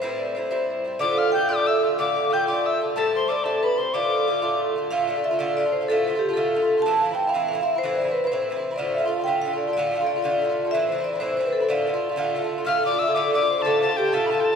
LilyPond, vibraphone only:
\new Staff \with { instrumentName = "Vibraphone" } { \time 6/8 \key d \minor \tempo 4. = 123 c''8 d''8 c''8 c''4. | d''8 f''8 g''8 d''8 e''8 r8 | d''8 f''8 g''8 d''8 e''8 r8 | a'8 c''8 d''8 a'8 b'8 c''8 |
d''2 r4 | f''8 d''8 e''8 d''8 d''8 c''8 | a'8 a'8 g'8 a'4. | a''8 f''8 g''8 f''8 f''8 e''8 |
c''16. d''32 c''8 b'8 c''4. | d''8 e''8 f''8 g''8 f''8 d''8 | d''8 f''8 d''8 d''4. | e''8 c''8 d''8 c''8 c''16 b'16 a'8 |
d''2 r4 | f''8 d''8 e''8 d''8 d''8 c''8 | a'8 r8 g'8 a'4. | }